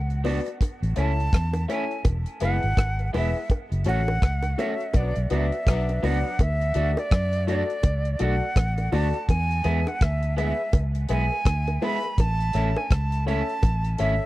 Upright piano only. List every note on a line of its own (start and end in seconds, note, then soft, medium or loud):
0.24 0.46 F#4 medium
0.24 0.47 B4 medium
0.24 0.47 D5 loud
0.96 1.18 E4 medium
0.96 1.19 A4 medium
0.96 1.19 C#5 medium
1.68 1.91 E4 medium
1.68 1.91 A4 medium
1.68 1.91 C#5 loud
2.41 2.63 E4 medium
2.41 2.63 G#4 medium
2.41 2.64 B4 loud
2.99 3.05 G#4 soft
2.99 3.05 B4 soft
3.13 3.35 E4 medium
3.13 3.36 G#4 medium
3.13 3.36 B4 loud
3.85 4.08 F#4 medium
3.85 4.08 A4 medium
3.85 4.08 C#5 medium
4.57 4.80 F#4 medium
4.57 4.80 A4 medium
4.57 4.81 C#5 medium
5.30 5.53 F#4 medium
5.30 5.51 B4 medium
5.30 5.51 D5 loud
5.52 5.58 B4 soft
5.52 5.58 D5 soft
6.02 6.25 F#4 medium
6.02 6.25 B4 medium
6.02 6.26 D5 loud
6.75 6.97 F#4 medium
6.75 6.98 A4 medium
6.75 6.98 D5 medium
7.47 7.70 F#4 medium
7.47 7.70 A4 medium
7.47 7.70 D5 loud
8.19 8.42 F#4 medium
8.19 8.42 A4 medium
8.19 8.43 D5 loud
8.78 8.84 A4 soft
8.78 8.84 D5 soft
8.92 9.15 F#4 loud
8.92 9.15 A4 medium
8.92 9.15 D5 loud
9.64 9.87 G#4 medium
9.64 9.87 B4 medium
9.64 9.87 E5 medium
10.37 10.59 G#4 medium
10.37 10.60 B4 medium
10.37 10.60 E5 loud
11.09 11.32 G#4 medium
11.09 11.30 B4 medium
11.09 11.30 E5 loud
11.32 11.37 B4 soft
11.32 11.37 E5 soft
11.81 12.04 G#4 medium
11.81 12.02 B4 medium
11.81 12.02 E5 loud
12.04 12.09 B4 soft
12.04 12.09 E5 soft
12.54 12.77 A4 medium
12.54 12.77 C#5 medium
12.54 12.77 E5 medium
13.26 13.49 A4 medium
13.26 13.49 C#5 medium
13.26 13.49 E5 loud
13.98 14.21 A4 medium
13.98 14.22 C#5 medium
13.98 14.22 E5 loud